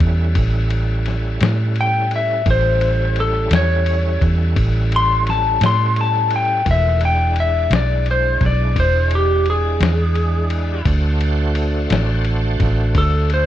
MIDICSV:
0, 0, Header, 1, 5, 480
1, 0, Start_track
1, 0, Tempo, 700117
1, 1685, Time_signature, 12, 3, 24, 8
1, 9228, End_track
2, 0, Start_track
2, 0, Title_t, "Electric slide guitar"
2, 0, Program_c, 0, 29
2, 1238, Note_on_c, 0, 79, 102
2, 1455, Note_off_c, 0, 79, 0
2, 1479, Note_on_c, 0, 76, 68
2, 1696, Note_off_c, 0, 76, 0
2, 1718, Note_on_c, 0, 72, 98
2, 2168, Note_off_c, 0, 72, 0
2, 2196, Note_on_c, 0, 69, 96
2, 2414, Note_off_c, 0, 69, 0
2, 2436, Note_on_c, 0, 73, 110
2, 2888, Note_off_c, 0, 73, 0
2, 3401, Note_on_c, 0, 84, 91
2, 3617, Note_off_c, 0, 84, 0
2, 3633, Note_on_c, 0, 81, 88
2, 3853, Note_off_c, 0, 81, 0
2, 3879, Note_on_c, 0, 84, 91
2, 4096, Note_off_c, 0, 84, 0
2, 4119, Note_on_c, 0, 81, 84
2, 4336, Note_off_c, 0, 81, 0
2, 4359, Note_on_c, 0, 79, 89
2, 4576, Note_off_c, 0, 79, 0
2, 4599, Note_on_c, 0, 76, 93
2, 4816, Note_off_c, 0, 76, 0
2, 4835, Note_on_c, 0, 79, 85
2, 5053, Note_off_c, 0, 79, 0
2, 5075, Note_on_c, 0, 76, 83
2, 5293, Note_off_c, 0, 76, 0
2, 5317, Note_on_c, 0, 74, 84
2, 5535, Note_off_c, 0, 74, 0
2, 5560, Note_on_c, 0, 72, 91
2, 5776, Note_off_c, 0, 72, 0
2, 5802, Note_on_c, 0, 74, 80
2, 6016, Note_off_c, 0, 74, 0
2, 6032, Note_on_c, 0, 72, 88
2, 6251, Note_off_c, 0, 72, 0
2, 6275, Note_on_c, 0, 67, 78
2, 6492, Note_off_c, 0, 67, 0
2, 6513, Note_on_c, 0, 68, 98
2, 7428, Note_off_c, 0, 68, 0
2, 8898, Note_on_c, 0, 69, 102
2, 9120, Note_off_c, 0, 69, 0
2, 9144, Note_on_c, 0, 72, 86
2, 9228, Note_off_c, 0, 72, 0
2, 9228, End_track
3, 0, Start_track
3, 0, Title_t, "Tonewheel organ"
3, 0, Program_c, 1, 16
3, 0, Note_on_c, 1, 55, 72
3, 0, Note_on_c, 1, 61, 71
3, 0, Note_on_c, 1, 64, 71
3, 0, Note_on_c, 1, 69, 70
3, 1659, Note_off_c, 1, 55, 0
3, 1659, Note_off_c, 1, 61, 0
3, 1661, Note_off_c, 1, 64, 0
3, 1662, Note_off_c, 1, 69, 0
3, 1686, Note_on_c, 1, 64, 73
3, 1687, Note_on_c, 1, 55, 70
3, 1691, Note_on_c, 1, 61, 71
3, 1691, Note_on_c, 1, 69, 77
3, 4540, Note_off_c, 1, 55, 0
3, 4540, Note_off_c, 1, 64, 0
3, 4542, Note_off_c, 1, 61, 0
3, 4542, Note_off_c, 1, 69, 0
3, 4560, Note_on_c, 1, 51, 59
3, 4560, Note_on_c, 1, 57, 62
3, 4563, Note_on_c, 1, 72, 64
3, 4564, Note_on_c, 1, 65, 65
3, 4803, Note_off_c, 1, 51, 0
3, 4803, Note_off_c, 1, 57, 0
3, 4804, Note_off_c, 1, 72, 0
3, 4804, Note_on_c, 1, 56, 62
3, 4805, Note_off_c, 1, 65, 0
3, 4805, Note_on_c, 1, 64, 63
3, 4806, Note_on_c, 1, 62, 61
3, 4810, Note_on_c, 1, 74, 63
3, 7414, Note_off_c, 1, 56, 0
3, 7414, Note_off_c, 1, 64, 0
3, 7415, Note_off_c, 1, 62, 0
3, 7417, Note_off_c, 1, 74, 0
3, 7444, Note_on_c, 1, 66, 65
3, 7445, Note_on_c, 1, 57, 71
3, 7445, Note_on_c, 1, 62, 70
3, 7445, Note_on_c, 1, 72, 73
3, 9228, Note_off_c, 1, 57, 0
3, 9228, Note_off_c, 1, 62, 0
3, 9228, Note_off_c, 1, 66, 0
3, 9228, Note_off_c, 1, 72, 0
3, 9228, End_track
4, 0, Start_track
4, 0, Title_t, "Fingered electric bass"
4, 0, Program_c, 2, 33
4, 2, Note_on_c, 2, 40, 101
4, 223, Note_off_c, 2, 40, 0
4, 245, Note_on_c, 2, 33, 97
4, 938, Note_off_c, 2, 33, 0
4, 968, Note_on_c, 2, 45, 87
4, 1660, Note_off_c, 2, 45, 0
4, 1688, Note_on_c, 2, 33, 98
4, 2380, Note_off_c, 2, 33, 0
4, 2405, Note_on_c, 2, 40, 96
4, 2859, Note_off_c, 2, 40, 0
4, 2891, Note_on_c, 2, 40, 97
4, 3110, Note_off_c, 2, 40, 0
4, 3130, Note_on_c, 2, 33, 90
4, 3821, Note_off_c, 2, 33, 0
4, 3846, Note_on_c, 2, 45, 92
4, 4539, Note_off_c, 2, 45, 0
4, 4569, Note_on_c, 2, 28, 97
4, 5260, Note_off_c, 2, 28, 0
4, 5281, Note_on_c, 2, 35, 94
4, 5735, Note_off_c, 2, 35, 0
4, 5765, Note_on_c, 2, 35, 90
4, 5986, Note_off_c, 2, 35, 0
4, 6007, Note_on_c, 2, 28, 82
4, 6697, Note_off_c, 2, 28, 0
4, 6722, Note_on_c, 2, 40, 96
4, 7413, Note_off_c, 2, 40, 0
4, 7443, Note_on_c, 2, 38, 110
4, 8133, Note_off_c, 2, 38, 0
4, 8162, Note_on_c, 2, 33, 95
4, 8612, Note_off_c, 2, 33, 0
4, 8639, Note_on_c, 2, 33, 88
4, 8859, Note_off_c, 2, 33, 0
4, 8877, Note_on_c, 2, 38, 81
4, 9228, Note_off_c, 2, 38, 0
4, 9228, End_track
5, 0, Start_track
5, 0, Title_t, "Drums"
5, 1, Note_on_c, 9, 36, 84
5, 3, Note_on_c, 9, 51, 64
5, 70, Note_off_c, 9, 36, 0
5, 71, Note_off_c, 9, 51, 0
5, 241, Note_on_c, 9, 51, 83
5, 243, Note_on_c, 9, 36, 99
5, 310, Note_off_c, 9, 51, 0
5, 311, Note_off_c, 9, 36, 0
5, 483, Note_on_c, 9, 51, 65
5, 551, Note_off_c, 9, 51, 0
5, 724, Note_on_c, 9, 51, 61
5, 740, Note_on_c, 9, 38, 31
5, 793, Note_off_c, 9, 51, 0
5, 809, Note_off_c, 9, 38, 0
5, 964, Note_on_c, 9, 51, 74
5, 979, Note_on_c, 9, 38, 106
5, 1032, Note_off_c, 9, 51, 0
5, 1048, Note_off_c, 9, 38, 0
5, 1204, Note_on_c, 9, 51, 57
5, 1273, Note_off_c, 9, 51, 0
5, 1447, Note_on_c, 9, 51, 55
5, 1515, Note_off_c, 9, 51, 0
5, 1686, Note_on_c, 9, 36, 102
5, 1686, Note_on_c, 9, 51, 71
5, 1754, Note_off_c, 9, 51, 0
5, 1755, Note_off_c, 9, 36, 0
5, 1927, Note_on_c, 9, 51, 63
5, 1996, Note_off_c, 9, 51, 0
5, 2165, Note_on_c, 9, 51, 59
5, 2234, Note_off_c, 9, 51, 0
5, 2405, Note_on_c, 9, 51, 96
5, 2421, Note_on_c, 9, 38, 118
5, 2474, Note_off_c, 9, 51, 0
5, 2490, Note_off_c, 9, 38, 0
5, 2647, Note_on_c, 9, 51, 67
5, 2716, Note_off_c, 9, 51, 0
5, 2890, Note_on_c, 9, 36, 78
5, 2892, Note_on_c, 9, 51, 63
5, 2958, Note_off_c, 9, 36, 0
5, 2961, Note_off_c, 9, 51, 0
5, 3129, Note_on_c, 9, 36, 107
5, 3129, Note_on_c, 9, 51, 85
5, 3197, Note_off_c, 9, 36, 0
5, 3198, Note_off_c, 9, 51, 0
5, 3373, Note_on_c, 9, 51, 67
5, 3442, Note_off_c, 9, 51, 0
5, 3611, Note_on_c, 9, 51, 62
5, 3627, Note_on_c, 9, 38, 33
5, 3680, Note_off_c, 9, 51, 0
5, 3696, Note_off_c, 9, 38, 0
5, 3847, Note_on_c, 9, 51, 89
5, 3863, Note_on_c, 9, 38, 92
5, 3916, Note_off_c, 9, 51, 0
5, 3932, Note_off_c, 9, 38, 0
5, 4089, Note_on_c, 9, 51, 60
5, 4157, Note_off_c, 9, 51, 0
5, 4323, Note_on_c, 9, 51, 60
5, 4392, Note_off_c, 9, 51, 0
5, 4566, Note_on_c, 9, 51, 74
5, 4567, Note_on_c, 9, 36, 96
5, 4635, Note_off_c, 9, 51, 0
5, 4636, Note_off_c, 9, 36, 0
5, 4804, Note_on_c, 9, 51, 63
5, 4873, Note_off_c, 9, 51, 0
5, 5045, Note_on_c, 9, 51, 59
5, 5113, Note_off_c, 9, 51, 0
5, 5285, Note_on_c, 9, 51, 74
5, 5300, Note_on_c, 9, 38, 119
5, 5353, Note_off_c, 9, 51, 0
5, 5369, Note_off_c, 9, 38, 0
5, 5526, Note_on_c, 9, 51, 59
5, 5594, Note_off_c, 9, 51, 0
5, 5765, Note_on_c, 9, 36, 77
5, 5765, Note_on_c, 9, 51, 57
5, 5780, Note_on_c, 9, 38, 31
5, 5833, Note_off_c, 9, 51, 0
5, 5834, Note_off_c, 9, 36, 0
5, 5849, Note_off_c, 9, 38, 0
5, 6005, Note_on_c, 9, 36, 108
5, 6007, Note_on_c, 9, 51, 80
5, 6074, Note_off_c, 9, 36, 0
5, 6076, Note_off_c, 9, 51, 0
5, 6244, Note_on_c, 9, 51, 66
5, 6313, Note_off_c, 9, 51, 0
5, 6484, Note_on_c, 9, 51, 53
5, 6552, Note_off_c, 9, 51, 0
5, 6723, Note_on_c, 9, 51, 77
5, 6739, Note_on_c, 9, 38, 103
5, 6791, Note_off_c, 9, 51, 0
5, 6807, Note_off_c, 9, 38, 0
5, 6962, Note_on_c, 9, 51, 63
5, 7031, Note_off_c, 9, 51, 0
5, 7200, Note_on_c, 9, 51, 64
5, 7269, Note_off_c, 9, 51, 0
5, 7442, Note_on_c, 9, 36, 111
5, 7442, Note_on_c, 9, 51, 86
5, 7511, Note_off_c, 9, 36, 0
5, 7511, Note_off_c, 9, 51, 0
5, 7684, Note_on_c, 9, 51, 66
5, 7752, Note_off_c, 9, 51, 0
5, 7919, Note_on_c, 9, 51, 65
5, 7988, Note_off_c, 9, 51, 0
5, 8160, Note_on_c, 9, 51, 88
5, 8176, Note_on_c, 9, 38, 104
5, 8228, Note_off_c, 9, 51, 0
5, 8244, Note_off_c, 9, 38, 0
5, 8396, Note_on_c, 9, 51, 60
5, 8464, Note_off_c, 9, 51, 0
5, 8638, Note_on_c, 9, 36, 86
5, 8639, Note_on_c, 9, 51, 70
5, 8655, Note_on_c, 9, 38, 30
5, 8706, Note_off_c, 9, 36, 0
5, 8707, Note_off_c, 9, 51, 0
5, 8723, Note_off_c, 9, 38, 0
5, 8877, Note_on_c, 9, 36, 105
5, 8877, Note_on_c, 9, 51, 77
5, 8945, Note_off_c, 9, 51, 0
5, 8946, Note_off_c, 9, 36, 0
5, 9117, Note_on_c, 9, 51, 63
5, 9185, Note_off_c, 9, 51, 0
5, 9228, End_track
0, 0, End_of_file